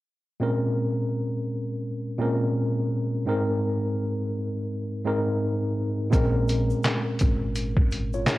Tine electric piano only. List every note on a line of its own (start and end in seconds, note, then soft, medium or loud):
0.40 1.44 A#2 medium
0.40 1.44 G#3 medium
0.40 1.45 C4 medium
0.40 1.45 C#4 medium
0.40 1.46 A#4 medium
2.18 2.97 A#2 medium
2.18 2.98 G#3 medium
2.18 2.98 C4 medium
2.18 2.99 C#4 medium
2.18 2.99 A#4 medium
3.26 4.30 G#2 medium
3.26 4.30 G#3 medium
3.26 4.31 C4 medium
3.26 4.31 D#4 medium
3.26 4.32 A#4 medium
5.04 5.83 G#2 medium
5.04 5.84 G#3 medium
5.04 5.84 C4 medium
5.04 5.84 D#4 medium
5.04 5.85 A#4 medium
6.10 7.15 A#2 medium
6.10 7.15 G#3 medium
6.10 7.16 C4 medium
6.10 7.16 C#4 medium
6.10 7.17 A#4 medium
8.14 8.38 F4 medium
8.14 8.38 C#5 medium